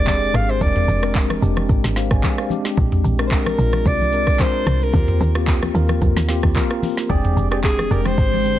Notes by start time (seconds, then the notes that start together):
Already playing: F1 G#3 C4 D4 G4 G#4 A#4
0.06 G#3 C4 D4 G4 D5, kick, clap, high conga, shaker
0.15 G#4
0.22 shaker
0.34 G#1 F5, cross-stick, high conga, shaker
0.49 C5, shaker
0.60 F1 G#3 C4 D4 A#4 D5, kick, low conga, shaker
0.76 mid tom, shaker
0.88 F1, high conga, shaker
1.02 G#3 C4 D4 A#4, cross-stick, shaker
1.15 kick, clap, shaker
1.30 cross-stick, high conga, shaker
1.41 F1 G#3 C4 D4 G4, shaker
1.56 cross-stick, high conga, shaker
1.69 G#1, kick, low conga, shaker
1.84 G#1, snare, high conga, shaker
1.96 C5 F5, snare, shaker
2.11 G#1 D5 G#5, kick, cross-stick, shaker
2.23 kick, clap, high conga, shaker
2.38 C5 F5, cross-stick, shaker
2.50 G#3 C4 D4 G4, high conga, shaker
2.65 snare, shaker
2.77 A#1, kick, low conga, shaker
2.92 mid tom, shaker
3.04 A#1, high conga, shaker
3.19 G#3 C4 D4 A#4, cross-stick, shaker
3.27 C5
3.31 A#4, kick, clap, shaker
3.46 cross-stick, high conga, shaker
3.58 A#1 G#3 C4 D4 F4, shaker
3.72 cross-stick, high conga, shaker
3.85 C2 D5, kick, low conga, shaker
4.01 high conga, shaker
4.12 G#3 C4 D4 A#4, shaker
4.27 A#1, kick, cross-stick, shaker
4.39 G#3 C4 D4 A#4 C5, kick, clap, high conga, shaker
4.55 shaker
4.66 C2, cross-stick, high conga, shaker
4.81 A#4, shaker
4.93 D#2 A#3 C4 F4 G4, kick, low conga, shaker
5.08 mid tom, shaker
5.20 D#2, high conga, shaker
5.35 A#3 C4 F4 G4, cross-stick, shaker
5.47 kick, clap, shaker
5.63 cross-stick, high conga, shaker
5.74 D#2 A#3 C4 F4 A#4, shaker
5.89 cross-stick, high conga, shaker
6.02 F2, kick, low conga, shaker
6.16 D#2, snare, high conga, shaker
6.28 A#3 C4 F4 G4, snare, shaker
6.43 D#2, kick, cross-stick, shaker
6.55 A#3 C4 F4 A#4, kick, clap, high conga, shaker
6.71 cross-stick, shaker
6.82 open hi-hat, high conga, shaker
6.97 snare, shaker
7.09 F1 D3 G#3 C4 D4 G4 G#4 D5 G5, kick, low conga, shaker
7.24 mid tom, shaker
7.37 F1, high conga, shaker
7.51 G#3 C4 D4 G4 G#4 D5, cross-stick, shaker
7.64 G#4, kick, clap, shaker
7.79 cross-stick, high conga, shaker
7.90 F1 G#3 C4 D4 G4 G#4 A#4 D5, shaker
8.05 C5, cross-stick, high conga, shaker
8.18 G#1, kick, low conga, shaker
8.33 high conga, shaker
8.44 G#3 C4 D4 G#4, shaker